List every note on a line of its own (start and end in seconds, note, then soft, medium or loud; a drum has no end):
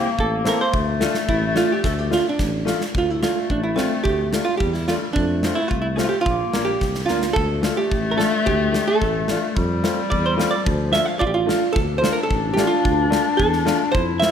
0.00 0.75 A#3 loud
0.19 0.52 A1 medium
0.19 0.48 A4 medium
0.19 kick medium
0.44 0.59 C4 medium
0.44 0.59 E4 medium
0.44 0.60 A4 medium
0.44 snare medium
0.48 0.61 A#4 medium
0.61 0.86 C5 medium
0.73 1.07 D2 medium
0.73 2.67 A3 loud
0.73 kick medium
1.00 1.15 A3 medium
1.00 1.15 D4 medium
1.00 1.15 F4 medium
1.00 snare medium
1.15 snare medium
1.29 1.62 A1 loud
1.29 1.57 E4 medium
1.29 kick medium
1.55 1.70 A3 medium
1.55 1.70 D4 medium
1.55 1.70 F4 medium
1.55 1.71 F4 medium
1.55 snare medium
1.72 1.85 G4 medium
1.84 2.17 D2 loud
1.84 1.98 A4 loud
1.84 kick medium
1.84 snare soft
1.98 2.12 G4 loud
2.10 2.25 A3 medium
2.10 2.25 D4 soft
2.10 2.25 F4 medium
2.10 snare medium
2.29 2.66 D4 medium
2.39 2.73 A1 medium
2.39 kick medium
2.39 snare medium
2.65 2.80 A3 medium
2.65 2.80 D4 medium
2.65 2.81 F4 medium
2.65 snare medium
2.81 snare medium
2.93 3.28 D2 medium
2.93 4.49 A3 loud
2.93 kick medium
2.98 3.10 F4 medium
3.10 3.22 E4 medium
3.22 3.36 A3 soft
3.22 3.36 D4 soft
3.22 3.51 F4 medium
3.22 3.37 F4 medium
3.22 snare medium
3.50 3.83 A1 medium
3.50 3.63 D4 medium
3.50 kick medium
3.63 3.78 E4 medium
3.75 3.90 A3 medium
3.75 4.05 C4 medium
3.75 3.91 D4 soft
3.75 3.91 F4 medium
3.75 snare medium
4.04 4.39 D2 medium
4.04 4.44 G4 loud
4.04 kick medium
4.32 4.46 A3 soft
4.32 4.47 D4 soft
4.32 4.47 F4 medium
4.32 snare medium
4.45 4.57 F4 medium
4.52 4.61 A3 medium
4.57 4.94 E2 medium
4.57 5.15 G3 medium
4.57 4.73 G4 medium
4.57 kick medium
4.73 4.88 E4 medium
4.73 snare soft
4.88 5.02 A3 medium
4.88 5.03 D4 medium
4.88 4.96 F4 medium
4.88 5.03 F4 medium
4.88 snare medium
5.13 5.49 F2 loud
5.13 6.22 A3 loud
5.13 5.57 D4 medium
5.13 kick medium
5.43 5.57 A3 soft
5.43 5.58 C4 soft
5.43 5.58 F4 medium
5.43 snare medium
5.55 5.68 E4 medium
5.68 6.04 C2 medium
5.68 5.81 F4 medium
5.68 kick medium
5.82 5.87 E4 medium
5.96 6.11 A3 medium
5.96 6.12 C4 soft
5.96 6.12 F4 medium
5.96 6.04 G4 medium
5.96 snare medium
6.04 6.09 F4 medium
6.09 6.21 G4 medium
6.21 6.64 F4 loud
6.26 6.43 A#1 medium
6.26 7.06 A#3 medium
6.26 kick medium
6.53 6.79 A#1 medium
6.53 6.67 A#3 medium
6.53 6.68 D4 soft
6.53 6.68 F4 medium
6.53 snare medium
6.65 7.05 G4 loud
6.81 7.06 C2 medium
6.81 kick medium
6.81 snare soft
6.95 snare medium
7.06 7.34 D2 medium
7.06 7.22 A#3 medium
7.06 7.22 D4 medium
7.06 7.36 F4 medium
7.06 7.23 F4 medium
7.06 snare medium
7.22 snare medium
7.33 7.69 D2 loud
7.33 7.77 A4 loud
7.33 kick medium
7.38 9.57 A3 loud
7.62 7.76 A3 soft
7.62 7.77 D4 soft
7.62 7.77 F4 medium
7.62 snare medium
7.77 8.13 G4 medium
7.91 8.25 A1 medium
7.91 kick medium
8.11 8.17 A#4 medium
8.16 8.31 A3 medium
8.16 8.32 D4 medium
8.16 8.32 F4 medium
8.16 8.47 A4 medium
8.16 snare medium
8.46 8.80 D2 loud
8.46 8.89 G4 loud
8.46 kick medium
8.72 8.87 A3 medium
8.72 8.87 D4 soft
8.72 8.88 G4 medium
8.72 snare medium
8.88 9.39 A4 loud
9.01 9.34 A1 medium
9.01 kick medium
9.28 9.42 A3 medium
9.28 9.43 D4 medium
9.28 9.43 F4 medium
9.28 snare medium
9.56 9.90 F2 loud
9.56 10.66 G3 loud
9.56 kick medium
9.83 9.97 A3 medium
9.83 9.97 C4 medium
9.83 9.97 F4 medium
9.83 snare medium
10.10 10.45 E2 medium
10.10 10.25 D5 medium
10.10 kick medium
10.26 10.33 C5 medium
10.37 10.51 A3 medium
10.37 10.52 C4 medium
10.37 10.52 F4 medium
10.37 snare medium
10.51 10.90 D5 medium
10.64 10.99 D2 loud
10.64 11.47 F3 medium
10.64 kick medium
10.91 11.06 A3 medium
10.91 11.07 D4 soft
10.91 11.07 F4 medium
10.91 11.06 E5 medium
10.91 snare medium
11.06 11.19 F5 loud
11.19 11.54 A1 medium
11.19 11.26 F4 medium
11.19 11.71 D5 medium
11.19 kick medium
11.27 11.34 G4 medium
11.34 11.77 F4 medium
11.46 11.61 A3 medium
11.46 11.61 D4 medium
11.46 11.62 F4 medium
11.46 snare medium
11.73 12.09 D2 medium
11.73 13.97 D4 loud
11.73 11.98 A4 loud
11.73 kick medium
11.98 12.16 A3 medium
11.98 12.16 D4 soft
11.98 12.12 C5 medium
12.03 12.17 F4 medium
12.03 snare medium
12.13 12.23 A#4 medium
12.23 12.55 A4 medium
12.31 12.63 A1 medium
12.31 kick medium
12.54 12.71 A3 medium
12.54 12.71 D4 medium
12.54 12.67 G4 medium
12.54 snare medium
12.58 12.72 F4 medium
12.67 13.40 F4 medium
12.85 13.18 D2 loud
12.85 kick medium
13.10 13.25 A3 medium
13.10 13.25 D4 medium
13.10 13.25 F4 medium
13.10 snare medium
13.37 13.72 E2 medium
13.37 13.91 A4 medium
13.37 kick medium
13.53 snare soft
13.65 13.80 A3 medium
13.65 13.80 D4 medium
13.65 13.80 F4 medium
13.65 snare medium
13.92 14.27 F2 medium
13.92 14.31 E4 loud
13.92 14.21 C5 loud
13.92 kick medium
14.20 14.31 A3 soft
14.20 14.31 C4 soft
14.20 14.31 F4 medium
14.20 14.31 E5 loud
14.20 snare medium